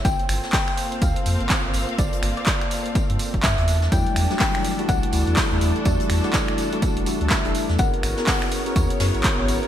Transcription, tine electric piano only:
X:1
M:4/4
L:1/16
Q:"Swing 16ths" 1/4=124
K:Edor
V:1 name="Tine electric piano"
z16 | z16 | [F,G,A,DE]3 [F,G,A,DE]4 [G,A,DEF]3 [G,A,DEF]3 [G,A,DEA]3 | [G,A,DEF]3 [G,A,DEF]4 [G,A,DEF]3 [G,A,DEF]3 [G,A,DEA]3 |
[B,CF^G^A]3 [B,CFGA]4 [B,CFGA]3 [B,CFGA]3 [B,CFGc]3 |]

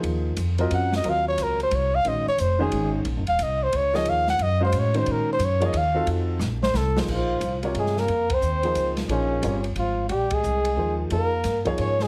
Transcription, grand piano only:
X:1
M:3/4
L:1/8
Q:"Swing" 1/4=179
K:Ebdor
V:1 name="Grand piano"
[F,B,EAc]2 z [G,CFBe]3 | [G,CFBe]4- [G,CFBe] z | [E,A,DGc] z2 [E,A,DGc]3 | z4 z [F,B,EAd]- |
[F,B,EAd]2 z [A,DGcf]2 [E,A,DGc]- | [E,A,DGc]2 z [F,B,EAd] z [CEFG=A]- | [CEFG=A]2 z3 [F,B,E_Ac]- | [K:Bbdor] [F,B,EAc]2 z [C,G,FBd]3 |
z3 [F,B,EAc]3 | [F,B,EAc]2 [G,CFBd] z3 | z4 [F,B,EAc]2 | [F,B,EAc] z2 [F,B,EAd]3 |]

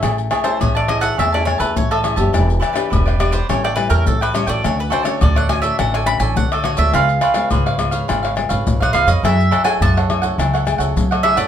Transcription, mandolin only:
X:1
M:4/4
L:1/16
Q:1/4=104
K:A
V:1 name="Mandolin"
z3 =c ^c d ^d f e =d c B c A z2 | z6 d =c ^c d B _B A =B c d | c B =c ^c d f g e f g b g f A c e | ^e4 z8 z f e ^d |
e3 g a2 z8 e d |]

